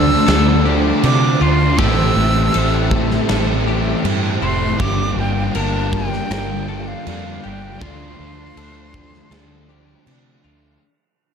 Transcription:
Already playing: fingered electric bass D2, distorted electric guitar D3 A3 D4, overdriven electric guitar D3 A3 D4 F4, string machine F3 C5 D5 A5, clean electric guitar A4, flute E6
0.27 fingered electric bass D2, overdriven electric guitar D3 A3 D4 F4, clean electric guitar A4, snare, crash
0.65 distorted electric guitar A3 D4, clean electric guitar G4
1.02 fingered electric bass C3, distorted electric guitar D3 A3 D4, overdriven electric guitar D3 A3 D4 F4, flute D6, crash
1.41 fingered electric bass D2, overdriven electric guitar A3 D4 F4, clean electric guitar F4, flute C6
1.77 fingered electric bass A1, overdriven electric guitar A2 E3, distorted electric guitar A2 E3 A3, string machine G4 E5, clean electric guitar G4, flute E6, kick, crash
1.81 overdriven electric guitar A2 A3 C4 E4
2.16 fingered electric bass A1, distorted electric guitar E3 A3, overdriven electric guitar C4 E4
2.20 overdriven electric guitar A3
2.53 fingered electric bass A1, distorted electric guitar A2 E3 A3, clean electric guitar A4, crash
2.91 distorted electric guitar E3 A3, kick
3.11 snare
3.29 fingered electric bass A1, overdriven electric guitar A2 E3 A3 C4, clean electric guitar A4, snare, crash
3.33 overdriven electric guitar E4
3.66 distorted electric guitar E3 A3, clean electric guitar G4
4.04 fingered electric bass G2, distorted electric guitar A2 E3 A3, overdriven electric guitar E3 A3 C4, crash
4.08 overdriven electric guitar E4
4.42 fingered electric bass F1, overdriven electric guitar A3 C4 E4, clean electric guitar E4, flute C6
4.79 fingered electric bass G1, distorted electric guitar G2 D3 G3, overdriven electric guitar G2 D3 G3, string machine A#3 F4 D5 G5, clean electric guitar G4, flute D6, kick, crash
4.83 overdriven electric guitar A#3 D4
5.16 fingered electric bass G1, distorted electric guitar D3 G3, overdriven electric guitar D4, flute G5
5.21 overdriven electric guitar G3 A#3
5.54 fingered electric bass G1, distorted electric guitar G2 D3 G3, clean electric guitar A#4, flute A5, crash
5.92 distorted electric guitar D3 G3, flute G5, kick
6.13 snare
6.31 fingered electric bass G1, overdriven electric guitar G2 D3 G3 A#3 D4, clean electric guitar A#4, snare, crash
6.68 distorted electric guitar D3 G3, clean electric guitar A4
6.88 flute F5
7.06 fingered electric bass F2, distorted electric guitar G2 D3 G3, overdriven electric guitar D3 G3 A#3 D4, crash
7.44 fingered electric bass G1, overdriven electric guitar G3 A#3 D4, clean electric guitar G4, flute G5
7.81 fingered electric bass D2, overdriven electric guitar D3 F3 A3 D4, distorted electric guitar D3 A3 D4, clean electric guitar F4, string machine C5 A5, flute C6, kick, crash
8.19 fingered electric bass D2, overdriven electric guitar F3 A3 D4, distorted electric guitar A3 D4
8.56 fingered electric bass D2, distorted electric guitar D3 A3 D4, clean electric guitar A4, crash
8.93 distorted electric guitar A3 D4, kick
9.14 snare
9.31 fingered electric bass D2, overdriven electric guitar D3 F3 A3 D4, clean electric guitar A4, snare, crash
9.68 distorted electric guitar A3 D4, clean electric guitar G4
10.06 fingered electric bass C3, distorted electric guitar D3 A3 D4, overdriven electric guitar D3 F3 A3 D4, crash
10.44 fingered electric bass D2, overdriven electric guitar F3 A3 D4, clean electric guitar F4

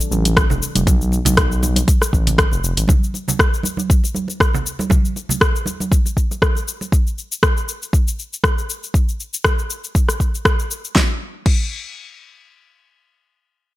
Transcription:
0.00 muted conga, shaker
0.11 analog synth bass A1, high conga, shaker
0.25 closed hi-hat, muted conga, shaker
0.37 kick, cross-stick, closed hi-hat, shaker
0.50 analog synth bass F1, muted conga, low conga, shaker
0.63 shaker
0.75 analog synth bass F1, closed hi-hat, muted conga, high conga, shaker
0.87 analog synth bass B1, kick, closed hi-hat, high conga, low conga, shaker
1.01 shaker
1.12 muted conga, shaker
1.25 analog synth bass B1, closed hi-hat, high conga, low conga, shaker
1.37 kick, cross-stick, closed hi-hat, shaker
1.52 shaker
1.63 muted conga, high conga, shaker
1.76 closed hi-hat, high conga, shaker
1.88 kick, closed hi-hat, shaker
2.01 cross-stick, muted conga, shaker
2.13 analog synth bass A1, kick, shaker
2.27 closed hi-hat, muted conga, low conga, shaker
2.38 kick, cross-stick, closed hi-hat, shaker
2.51 analog synth bass F1, muted conga, shaker
2.64 analog synth bass F1, shaker
2.77 analog synth bass A1, closed hi-hat, muted conga, shaker
2.88 kick, high conga, low conga, shaker
3.04 shaker
3.14 muted conga, shaker
3.28 high conga, low conga, shaker
3.39 kick, cross-stick, muted conga, shaker
3.54 shaker
3.63 muted conga, high conga, shaker
3.77 high conga, shaker
3.90 kick, shaker
4.04 muted conga, shaker
4.15 high conga, shaker
4.28 muted conga, shaker
4.40 kick, cross-stick, shaker
4.53 muted conga, low conga, shaker
4.66 shaker
4.79 muted conga, high conga, shaker
4.90 kick, high conga, low conga, shaker
5.05 shaker
5.16 muted conga, shaker
5.29 high conga, low conga, shaker
5.41 kick, cross-stick, shaker
5.56 shaker
5.66 muted conga, high conga, shaker
5.80 high conga, shaker
5.92 kick, shaker
6.06 muted conga, shaker
6.17 kick, shaker
6.31 muted conga, shaker
6.42 kick, cross-stick, shaker
6.55 muted conga, shaker
6.68 shaker
6.81 muted conga, shaker
6.92 kick, shaker
7.07 shaker
7.18 shaker
7.32 shaker
7.43 kick, cross-stick, shaker
7.57 shaker
7.69 shaker
7.82 shaker
7.93 kick, shaker
8.08 shaker
8.19 shaker
8.33 shaker
8.44 kick, cross-stick, shaker
8.58 shaker
8.70 shaker
8.83 shaker
8.94 kick, shaker
9.09 shaker
9.20 shaker
9.34 shaker
9.44 kick, cross-stick, shaker
9.59 shaker
9.70 shaker
9.84 shaker
9.95 kick, shaker
10.09 cross-stick, shaker
10.20 kick, shaker
10.35 shaker
10.45 kick, cross-stick, shaker
10.59 shaker
10.71 shaker
10.85 shaker
10.95 kick, snare
11.46 kick, crash

